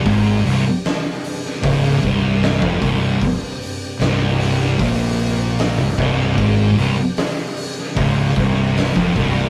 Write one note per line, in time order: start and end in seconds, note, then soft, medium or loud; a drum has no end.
0.00 9.49 C3 medium
0.00 9.49 D4 medium
0.00 9.49 G4 medium
0.05 0.42 G#1 medium
0.05 0.43 G#2 loud
0.05 kick loud
0.05 open hi-hat medium
0.45 0.63 C1 loud
0.45 0.63 C2 loud
0.45 open hi-hat medium
0.85 snare loud
0.85 open hi-hat medium
1.24 open hi-hat medium
1.45 snare soft
1.63 2.00 C#1 loud
1.63 2.01 C#2 loud
1.63 kick loud
1.63 open hi-hat loud
1.85 snare soft
2.02 2.58 C1 medium
2.02 2.60 C2 loud
2.02 kick loud
2.02 open hi-hat medium
2.43 snare loud
2.43 open hi-hat medium
2.62 2.80 F1 loud
2.62 2.80 F2 loud
2.62 kick loud
2.82 3.19 C1 loud
2.82 3.20 C2 loud
2.82 kick loud
2.82 open hi-hat medium
3.21 kick loud
3.21 open hi-hat medium
3.61 open hi-hat medium
4.00 4.75 C1 loud
4.00 4.78 C2 loud
4.00 snare loud
4.00 open hi-hat loud
4.40 open hi-hat medium
4.61 snare soft
4.79 5.74 A#1 loud
4.79 5.77 A#2 loud
4.79 kick loud
4.79 open hi-hat loud
5.19 open hi-hat medium
5.59 snare loud
5.59 open hi-hat loud
5.78 5.97 C1 medium
5.78 5.96 C2 medium
5.97 6.35 C1 loud
5.97 6.36 C2 loud
5.97 kick loud
5.97 open hi-hat medium
6.36 6.75 G#1 medium
6.36 6.75 G#2 loud
6.36 kick loud
6.36 open hi-hat medium
6.77 6.96 C1 loud
6.77 6.96 C2 loud
6.77 open hi-hat medium
7.17 snare loud
7.17 open hi-hat medium
7.57 open hi-hat medium
7.78 snare soft
7.96 8.33 C#1 loud
7.96 8.34 C#2 loud
7.96 kick loud
7.96 open hi-hat medium
8.36 8.91 C1 medium
8.36 8.94 C2 loud
8.36 kick loud
8.36 open hi-hat medium
8.77 snare loud
8.77 open hi-hat medium
8.95 9.14 F1 loud
8.95 9.14 F2 medium
8.95 kick loud
9.15 9.49 C1 loud
9.15 9.49 C2 loud
9.15 kick loud
9.15 open hi-hat medium